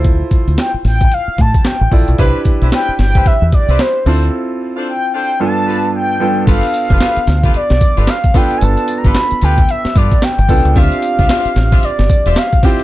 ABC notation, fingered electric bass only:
X:1
M:4/4
L:1/16
Q:"Swing 16ths" 1/4=112
K:Gmix
V:1 name="Fingered electric bass" clef=bass
D,,2 z D,, z2 A,,,2 z2 A,, z2 A,,, _B,,, =B,,, | C,, z2 B,,, z2 G,,,2 z E,, z C,, z2 D,,2 | z16 | G,,, z2 F,,, z2 D,,2 z B,,, z G,,, z4 |
G,,, z2 G,,, z2 D,,2 z2 G,, z2 G,,, C,, ^C,, | D,, z2 C,, z2 A,,,2 z G,,, z E,,, z4 |]